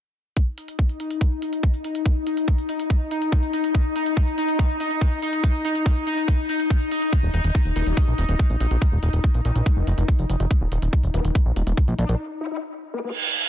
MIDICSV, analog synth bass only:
0, 0, Header, 1, 2, 480
1, 0, Start_track
1, 0, Tempo, 422535
1, 416, Time_signature, 4, 2, 24, 8
1, 15322, End_track
2, 0, Start_track
2, 0, Title_t, "Analog synth bass"
2, 0, Program_c, 0, 38
2, 8215, Note_on_c, 0, 27, 91
2, 8286, Note_off_c, 0, 27, 0
2, 8335, Note_on_c, 0, 27, 100
2, 8406, Note_off_c, 0, 27, 0
2, 8455, Note_on_c, 0, 27, 91
2, 8526, Note_off_c, 0, 27, 0
2, 8695, Note_on_c, 0, 27, 80
2, 8766, Note_off_c, 0, 27, 0
2, 8816, Note_on_c, 0, 27, 103
2, 8886, Note_off_c, 0, 27, 0
2, 8936, Note_on_c, 0, 27, 91
2, 9006, Note_off_c, 0, 27, 0
2, 9176, Note_on_c, 0, 34, 83
2, 9246, Note_off_c, 0, 34, 0
2, 9296, Note_on_c, 0, 27, 99
2, 9366, Note_off_c, 0, 27, 0
2, 9416, Note_on_c, 0, 27, 96
2, 9486, Note_off_c, 0, 27, 0
2, 9656, Note_on_c, 0, 34, 86
2, 9726, Note_off_c, 0, 34, 0
2, 9776, Note_on_c, 0, 34, 94
2, 9846, Note_off_c, 0, 34, 0
2, 9896, Note_on_c, 0, 34, 88
2, 9966, Note_off_c, 0, 34, 0
2, 10136, Note_on_c, 0, 27, 90
2, 10206, Note_off_c, 0, 27, 0
2, 10256, Note_on_c, 0, 27, 98
2, 10326, Note_off_c, 0, 27, 0
2, 10376, Note_on_c, 0, 27, 94
2, 10446, Note_off_c, 0, 27, 0
2, 10616, Note_on_c, 0, 34, 85
2, 10686, Note_off_c, 0, 34, 0
2, 10736, Note_on_c, 0, 34, 94
2, 10806, Note_off_c, 0, 34, 0
2, 10856, Note_on_c, 0, 34, 86
2, 10926, Note_off_c, 0, 34, 0
2, 11096, Note_on_c, 0, 29, 82
2, 11166, Note_off_c, 0, 29, 0
2, 11216, Note_on_c, 0, 29, 100
2, 11286, Note_off_c, 0, 29, 0
2, 11336, Note_on_c, 0, 29, 99
2, 11406, Note_off_c, 0, 29, 0
2, 11576, Note_on_c, 0, 29, 87
2, 11646, Note_off_c, 0, 29, 0
2, 11696, Note_on_c, 0, 29, 92
2, 11766, Note_off_c, 0, 29, 0
2, 11816, Note_on_c, 0, 29, 92
2, 11886, Note_off_c, 0, 29, 0
2, 12056, Note_on_c, 0, 27, 88
2, 12126, Note_off_c, 0, 27, 0
2, 12175, Note_on_c, 0, 27, 104
2, 12246, Note_off_c, 0, 27, 0
2, 12296, Note_on_c, 0, 27, 96
2, 12366, Note_off_c, 0, 27, 0
2, 12535, Note_on_c, 0, 27, 85
2, 12606, Note_off_c, 0, 27, 0
2, 12656, Note_on_c, 0, 27, 98
2, 12726, Note_off_c, 0, 27, 0
2, 12776, Note_on_c, 0, 27, 90
2, 12846, Note_off_c, 0, 27, 0
2, 13016, Note_on_c, 0, 34, 80
2, 13086, Note_off_c, 0, 34, 0
2, 13136, Note_on_c, 0, 27, 100
2, 13206, Note_off_c, 0, 27, 0
2, 13256, Note_on_c, 0, 27, 103
2, 13326, Note_off_c, 0, 27, 0
2, 13496, Note_on_c, 0, 34, 91
2, 13566, Note_off_c, 0, 34, 0
2, 13616, Note_on_c, 0, 34, 100
2, 13686, Note_off_c, 0, 34, 0
2, 13736, Note_on_c, 0, 34, 86
2, 13806, Note_off_c, 0, 34, 0
2, 15322, End_track
0, 0, End_of_file